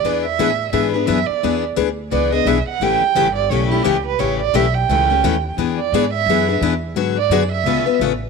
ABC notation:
X:1
M:4/4
L:1/16
Q:"Swing" 1/4=173
K:Emix
V:1 name="Violin"
d2 e6 e2 B2 e2 d2- | d2 z6 d2 ^d2 e2 f2 | =g6 d2 c2 E2 =G2 B2 | c2 d2 e2 =g8- g2 |
z2 d4 e6 z4 | z2 d4 e6 z4 |]
V:2 name="Steel-string acoustic guitar"
[E,B,DG]2 z2 [E,B,DG] z3 [E,B,DG]2 [B,DG]2 [E,B,DG] z3 | [E,B,DG]2 z2 [E,B,DG] z3 [E,B,DG]2 [B,DG]2 [E,B,DG] z3 | [C,E,A,C=G]2 z2 [C,E,A,CG] z3 [C,E,A,CG]2 [A,CG]2 [C,E,A,CG] z3 | [C,E,A,C=G]2 z2 [C,E,A,CG] z3 [C,E,A,CG]2 [A,CG]2 [C,E,A,CG] z3 |
[E,B,DG]2 z2 [E,B,DG] z3 [E,B,DG]2 [B,DG]2 [E,B,DG] z3 | [D,F,B,FG]2 z2 [D,F,B,FG] z3 [C,A,B,^EB]2 [B,EB]2 [C,A,B,EB] z3 |]
V:3 name="Upright bass" clef=bass
E,,4 A,,4 G,,4 F,,2 z2 | E,,4 D,,4 C,,4 B,,,2 z2 | A,,,2 z2 =G,,,4 B,,,4 C,,4 | A,,,4 B,,,4 C,,4 ^D,,4 |
E,,4 G,,4 F,,4 E,,4 | G,,4 F,,4 C,,2 z2 A,,,4 |]